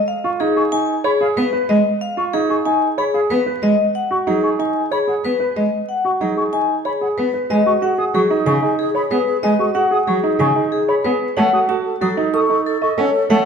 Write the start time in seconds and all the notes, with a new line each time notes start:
0.08 F5
0.24 F4 C#6
0.40 D#4 G#4
0.56 G#4 C#6
0.72 D#4 G#5
1.04 G#4 C#5 B5
1.20 G#4 F5
1.37 B3 B4
1.53 B4
1.69 G#3 D#5
2.01 F5
2.17 F4 C#6
2.33 D#4 G#4
2.50 G#4 C#6
2.65 D#4 G#5
2.98 G#4 C#5 B5
3.14 G#4 F5
3.30 B3 B4
3.46 B4
3.62 G#3 D#5
3.95 F#5
4.11 F#4 C#6
4.27 F#3 D#4 G#4
4.43 G#4 C#6
4.59 D#4 G#5
4.91 G#4 C#5 B5
5.08 G#4 F#5
5.24 B3 B4
5.40 B4
5.56 G#3 D#5
5.89 F#5
6.04 F#4 C#6
6.21 F#3 D#4 G#4
6.37 G#4 C#6
6.53 D#4 G#5
6.85 G#4 C#5 B5
7.01 G#4 F#5
7.18 B3 B4
7.34 B4
7.50 G#3 G#4 B4 D#5 G#5
7.66 F#4 G#4 C#6
7.82 F#4 G#4 F#5
7.98 G#4 D#6
8.14 F#3 F#4 G#4 C#6
8.31 D#4 G#4
8.46 C#3 G#4 G#5 C#6
8.62 D#4 G#4
8.79 G#4
8.95 G#4 C#5 B5
9.11 B3 G#4 B4 F#5
9.26 G#4
9.42 G#3 G#4 B4 D#5 G#5
9.59 F#4 G#4 C#6
9.75 F#4 G#4 F#5
9.91 G#4 D#6
10.07 F#3 F#4 G#4 C#6
10.23 D#4 G#4
10.39 C#3 G#4 G#5 C#6
10.56 D#4 G#4
10.72 G#4
10.88 G#4 C#5 B5
11.04 B3 G#4 B4 F#5
11.37 A3 A4 C#5 F#5 A5
11.53 F#4 A4 D#6
11.69 F#4 A4 A5
11.85 A4
12.01 F#3 F#4 A4 D#6
12.17 D#4 A4
12.34 A4 C#6 D#6
12.50 D#4 A4
12.66 A4
12.82 A4 D#5 C#6
12.98 C#4 A4 C#5 F#5
13.14 A4
13.30 A3 A4 C#5 F#5 A5